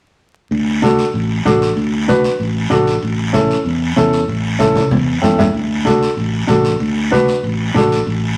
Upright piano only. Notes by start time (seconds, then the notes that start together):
0.82 D4 F#4 A4
1.45 D4 F#4 A4
2.08 D4 F#4 B4
2.70 D4 F#4 A4
3.33 C#4 E4 A4
3.96 C#4 E4 A4
4.59 C#4 E4 A4
5.21 C#4 E4 A4 G5
5.38 E5
5.85 D4 F#4 A4
6.47 D4 F#4 A4
7.11 D4 F#4 B4
7.74 D4 F#4 A4